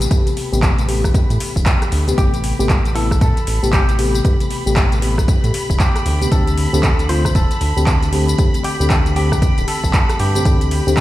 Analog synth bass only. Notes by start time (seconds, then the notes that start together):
0.53 A1
1.30 A2
1.56 E1
1.92 D2
2.18 A1
2.59 A1
3.21 A2
3.47 A1
3.63 A1
4.66 A1
5.44 A2
5.70 E1
6.06 D2
6.32 D2
6.73 D2
7.35 D1
7.61 D2
7.77 D2
8.80 D2
9.58 D1
9.84 A1
10.20 G2
10.45 D2
10.87 D2